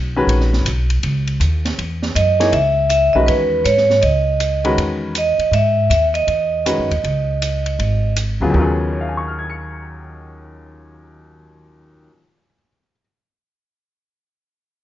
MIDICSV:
0, 0, Header, 1, 6, 480
1, 0, Start_track
1, 0, Tempo, 375469
1, 1324, Time_signature, 4, 2, 24, 8
1, 18966, End_track
2, 0, Start_track
2, 0, Title_t, "Vibraphone"
2, 0, Program_c, 0, 11
2, 2755, Note_on_c, 0, 75, 90
2, 3204, Note_off_c, 0, 75, 0
2, 3228, Note_on_c, 0, 76, 91
2, 3680, Note_off_c, 0, 76, 0
2, 3702, Note_on_c, 0, 76, 100
2, 4003, Note_on_c, 0, 75, 82
2, 4031, Note_off_c, 0, 76, 0
2, 4086, Note_off_c, 0, 75, 0
2, 4173, Note_on_c, 0, 71, 81
2, 4661, Note_on_c, 0, 73, 75
2, 4681, Note_off_c, 0, 71, 0
2, 5116, Note_off_c, 0, 73, 0
2, 5136, Note_on_c, 0, 75, 72
2, 6056, Note_off_c, 0, 75, 0
2, 6621, Note_on_c, 0, 75, 91
2, 7057, Note_off_c, 0, 75, 0
2, 7082, Note_on_c, 0, 76, 93
2, 7530, Note_off_c, 0, 76, 0
2, 7546, Note_on_c, 0, 76, 91
2, 7688, Note_off_c, 0, 76, 0
2, 7852, Note_on_c, 0, 75, 85
2, 10379, Note_off_c, 0, 75, 0
2, 18966, End_track
3, 0, Start_track
3, 0, Title_t, "Upright piano"
3, 0, Program_c, 1, 0
3, 208, Note_on_c, 1, 51, 71
3, 210, Note_on_c, 1, 61, 65
3, 212, Note_on_c, 1, 66, 64
3, 216, Note_on_c, 1, 56, 60
3, 221, Note_on_c, 1, 71, 76
3, 818, Note_off_c, 1, 51, 0
3, 818, Note_off_c, 1, 61, 0
3, 820, Note_off_c, 1, 66, 0
3, 821, Note_off_c, 1, 56, 0
3, 824, Note_off_c, 1, 71, 0
3, 3062, Note_on_c, 1, 52, 58
3, 3064, Note_on_c, 1, 58, 57
3, 3070, Note_on_c, 1, 68, 60
3, 3071, Note_on_c, 1, 73, 67
3, 3074, Note_on_c, 1, 63, 59
3, 3237, Note_off_c, 1, 52, 0
3, 3238, Note_off_c, 1, 58, 0
3, 3241, Note_off_c, 1, 68, 0
3, 3242, Note_off_c, 1, 73, 0
3, 3243, Note_off_c, 1, 63, 0
3, 4028, Note_on_c, 1, 51, 61
3, 4030, Note_on_c, 1, 56, 60
3, 4030, Note_on_c, 1, 61, 55
3, 4036, Note_on_c, 1, 66, 63
3, 4038, Note_on_c, 1, 71, 73
3, 4645, Note_off_c, 1, 51, 0
3, 4646, Note_off_c, 1, 56, 0
3, 4646, Note_off_c, 1, 61, 0
3, 4649, Note_off_c, 1, 66, 0
3, 4650, Note_off_c, 1, 71, 0
3, 5935, Note_on_c, 1, 51, 66
3, 5940, Note_on_c, 1, 61, 60
3, 5942, Note_on_c, 1, 56, 65
3, 5950, Note_on_c, 1, 71, 73
3, 5952, Note_on_c, 1, 66, 63
3, 6558, Note_off_c, 1, 51, 0
3, 6560, Note_off_c, 1, 61, 0
3, 6561, Note_off_c, 1, 56, 0
3, 6565, Note_off_c, 1, 71, 0
3, 6566, Note_off_c, 1, 66, 0
3, 8511, Note_on_c, 1, 61, 47
3, 8512, Note_on_c, 1, 51, 55
3, 8513, Note_on_c, 1, 56, 46
3, 8514, Note_on_c, 1, 66, 51
3, 8522, Note_on_c, 1, 71, 62
3, 8793, Note_off_c, 1, 51, 0
3, 8793, Note_off_c, 1, 61, 0
3, 8794, Note_off_c, 1, 56, 0
3, 8794, Note_off_c, 1, 66, 0
3, 8798, Note_off_c, 1, 71, 0
3, 10753, Note_on_c, 1, 54, 57
3, 10756, Note_on_c, 1, 49, 61
3, 10763, Note_on_c, 1, 59, 55
3, 10771, Note_on_c, 1, 68, 61
3, 10772, Note_on_c, 1, 65, 55
3, 10865, Note_on_c, 1, 39, 63
3, 10890, Note_on_c, 1, 51, 57
3, 10907, Note_off_c, 1, 54, 0
3, 10926, Note_on_c, 1, 54, 59
3, 10956, Note_on_c, 1, 61, 56
3, 10966, Note_off_c, 1, 65, 0
3, 10985, Note_on_c, 1, 65, 58
3, 10999, Note_off_c, 1, 68, 0
3, 11019, Note_on_c, 1, 68, 67
3, 11369, Note_off_c, 1, 49, 0
3, 11372, Note_off_c, 1, 59, 0
3, 11412, Note_on_c, 1, 73, 41
3, 11516, Note_on_c, 1, 77, 42
3, 11619, Note_on_c, 1, 80, 39
3, 11728, Note_on_c, 1, 85, 36
3, 11863, Note_on_c, 1, 89, 34
3, 12002, Note_on_c, 1, 92, 35
3, 12141, Note_on_c, 1, 97, 33
3, 15413, Note_off_c, 1, 39, 0
3, 15438, Note_off_c, 1, 51, 0
3, 15474, Note_off_c, 1, 54, 0
3, 15504, Note_off_c, 1, 61, 0
3, 15533, Note_off_c, 1, 65, 0
3, 15567, Note_off_c, 1, 68, 0
3, 15908, Note_off_c, 1, 73, 0
3, 16013, Note_off_c, 1, 77, 0
3, 16116, Note_off_c, 1, 80, 0
3, 16225, Note_off_c, 1, 85, 0
3, 16360, Note_off_c, 1, 89, 0
3, 16499, Note_off_c, 1, 92, 0
3, 16638, Note_off_c, 1, 97, 0
3, 18966, End_track
4, 0, Start_track
4, 0, Title_t, "Upright bass"
4, 0, Program_c, 2, 32
4, 0, Note_on_c, 2, 35, 82
4, 340, Note_off_c, 2, 35, 0
4, 347, Note_on_c, 2, 34, 78
4, 821, Note_off_c, 2, 34, 0
4, 834, Note_on_c, 2, 35, 85
4, 1305, Note_off_c, 2, 35, 0
4, 1321, Note_on_c, 2, 37, 75
4, 1781, Note_off_c, 2, 37, 0
4, 1789, Note_on_c, 2, 39, 84
4, 2261, Note_off_c, 2, 39, 0
4, 2277, Note_on_c, 2, 40, 73
4, 2745, Note_off_c, 2, 40, 0
4, 2755, Note_on_c, 2, 42, 83
4, 3224, Note_off_c, 2, 42, 0
4, 3232, Note_on_c, 2, 37, 78
4, 3974, Note_off_c, 2, 37, 0
4, 4026, Note_on_c, 2, 35, 63
4, 4178, Note_off_c, 2, 35, 0
4, 4186, Note_on_c, 2, 40, 72
4, 4639, Note_off_c, 2, 40, 0
4, 4666, Note_on_c, 2, 44, 68
4, 5118, Note_off_c, 2, 44, 0
4, 5144, Note_on_c, 2, 37, 68
4, 6062, Note_off_c, 2, 37, 0
4, 6099, Note_on_c, 2, 40, 68
4, 6847, Note_off_c, 2, 40, 0
4, 7048, Note_on_c, 2, 44, 76
4, 7508, Note_off_c, 2, 44, 0
4, 7538, Note_on_c, 2, 39, 74
4, 7993, Note_off_c, 2, 39, 0
4, 8017, Note_on_c, 2, 40, 70
4, 8622, Note_off_c, 2, 40, 0
4, 8667, Note_on_c, 2, 42, 60
4, 8821, Note_off_c, 2, 42, 0
4, 8832, Note_on_c, 2, 39, 67
4, 8983, Note_off_c, 2, 39, 0
4, 8995, Note_on_c, 2, 37, 73
4, 9909, Note_off_c, 2, 37, 0
4, 9957, Note_on_c, 2, 32, 67
4, 10696, Note_off_c, 2, 32, 0
4, 10743, Note_on_c, 2, 38, 69
4, 10904, Note_off_c, 2, 38, 0
4, 10918, Note_on_c, 2, 39, 75
4, 15415, Note_off_c, 2, 39, 0
4, 18966, End_track
5, 0, Start_track
5, 0, Title_t, "Muted upright bass strokes"
5, 6882, Note_on_c, 9, 29, 40
5, 7010, Note_off_c, 9, 29, 0
5, 18966, End_track
6, 0, Start_track
6, 0, Title_t, "Drums"
6, 370, Note_on_c, 9, 51, 55
6, 498, Note_off_c, 9, 51, 0
6, 521, Note_on_c, 9, 38, 25
6, 649, Note_off_c, 9, 38, 0
6, 682, Note_on_c, 9, 38, 40
6, 810, Note_off_c, 9, 38, 0
6, 842, Note_on_c, 9, 44, 58
6, 842, Note_on_c, 9, 51, 66
6, 970, Note_off_c, 9, 44, 0
6, 970, Note_off_c, 9, 51, 0
6, 1151, Note_on_c, 9, 51, 45
6, 1278, Note_off_c, 9, 51, 0
6, 1317, Note_on_c, 9, 51, 62
6, 1445, Note_off_c, 9, 51, 0
6, 1629, Note_on_c, 9, 51, 41
6, 1757, Note_off_c, 9, 51, 0
6, 1798, Note_on_c, 9, 44, 45
6, 1798, Note_on_c, 9, 51, 57
6, 1926, Note_off_c, 9, 44, 0
6, 1926, Note_off_c, 9, 51, 0
6, 2113, Note_on_c, 9, 38, 44
6, 2116, Note_on_c, 9, 51, 46
6, 2241, Note_off_c, 9, 38, 0
6, 2244, Note_off_c, 9, 51, 0
6, 2285, Note_on_c, 9, 51, 51
6, 2412, Note_off_c, 9, 51, 0
6, 2589, Note_on_c, 9, 38, 41
6, 2717, Note_off_c, 9, 38, 0
6, 2762, Note_on_c, 9, 44, 55
6, 2762, Note_on_c, 9, 51, 62
6, 2890, Note_off_c, 9, 44, 0
6, 2890, Note_off_c, 9, 51, 0
6, 3073, Note_on_c, 9, 38, 39
6, 3076, Note_on_c, 9, 51, 48
6, 3201, Note_off_c, 9, 38, 0
6, 3204, Note_off_c, 9, 51, 0
6, 3231, Note_on_c, 9, 51, 57
6, 3359, Note_off_c, 9, 51, 0
6, 3706, Note_on_c, 9, 44, 54
6, 3706, Note_on_c, 9, 51, 58
6, 3834, Note_off_c, 9, 44, 0
6, 3834, Note_off_c, 9, 51, 0
6, 4194, Note_on_c, 9, 51, 61
6, 4322, Note_off_c, 9, 51, 0
6, 4671, Note_on_c, 9, 44, 49
6, 4671, Note_on_c, 9, 51, 72
6, 4799, Note_off_c, 9, 44, 0
6, 4799, Note_off_c, 9, 51, 0
6, 4827, Note_on_c, 9, 38, 28
6, 4955, Note_off_c, 9, 38, 0
6, 4987, Note_on_c, 9, 38, 42
6, 5115, Note_off_c, 9, 38, 0
6, 5144, Note_on_c, 9, 51, 57
6, 5272, Note_off_c, 9, 51, 0
6, 5626, Note_on_c, 9, 44, 49
6, 5626, Note_on_c, 9, 51, 58
6, 5754, Note_off_c, 9, 44, 0
6, 5754, Note_off_c, 9, 51, 0
6, 5940, Note_on_c, 9, 51, 44
6, 6068, Note_off_c, 9, 51, 0
6, 6112, Note_on_c, 9, 51, 57
6, 6240, Note_off_c, 9, 51, 0
6, 6585, Note_on_c, 9, 44, 58
6, 6585, Note_on_c, 9, 51, 66
6, 6712, Note_off_c, 9, 44, 0
6, 6712, Note_off_c, 9, 51, 0
6, 6896, Note_on_c, 9, 51, 42
6, 7024, Note_off_c, 9, 51, 0
6, 7072, Note_on_c, 9, 51, 59
6, 7200, Note_off_c, 9, 51, 0
6, 7553, Note_on_c, 9, 44, 49
6, 7553, Note_on_c, 9, 51, 64
6, 7681, Note_off_c, 9, 44, 0
6, 7681, Note_off_c, 9, 51, 0
6, 7861, Note_on_c, 9, 51, 41
6, 7989, Note_off_c, 9, 51, 0
6, 8025, Note_on_c, 9, 51, 51
6, 8153, Note_off_c, 9, 51, 0
6, 8515, Note_on_c, 9, 44, 61
6, 8515, Note_on_c, 9, 51, 70
6, 8643, Note_off_c, 9, 44, 0
6, 8643, Note_off_c, 9, 51, 0
6, 8838, Note_on_c, 9, 51, 42
6, 8966, Note_off_c, 9, 51, 0
6, 9005, Note_on_c, 9, 51, 49
6, 9133, Note_off_c, 9, 51, 0
6, 9486, Note_on_c, 9, 44, 52
6, 9486, Note_on_c, 9, 51, 63
6, 9614, Note_off_c, 9, 44, 0
6, 9614, Note_off_c, 9, 51, 0
6, 9793, Note_on_c, 9, 51, 44
6, 9921, Note_off_c, 9, 51, 0
6, 9965, Note_on_c, 9, 51, 54
6, 10093, Note_off_c, 9, 51, 0
6, 10438, Note_on_c, 9, 44, 53
6, 10438, Note_on_c, 9, 51, 66
6, 10565, Note_off_c, 9, 44, 0
6, 10565, Note_off_c, 9, 51, 0
6, 10920, Note_on_c, 9, 36, 81
6, 11048, Note_off_c, 9, 36, 0
6, 18966, End_track
0, 0, End_of_file